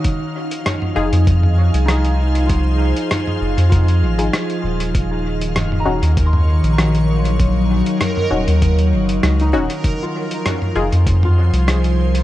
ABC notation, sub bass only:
X:1
M:4/4
L:1/16
Q:"Swing 16ths" 1/4=98
K:Fphr
V:1 name="Sub bass" clef=bass
z6 F,,, F,,4 C,,4- C,,- | C,,3 z3 F,,, F,,3 A,,,2 z2 E,,,2- | E,,,6 E,,, E,,4 B,,,4- B,,,- | B,,,3 z3 E,,, E,,3 G,,,2 D,,2 E,,, z |
z6 F,,, F,,4 C,,4- C,, |]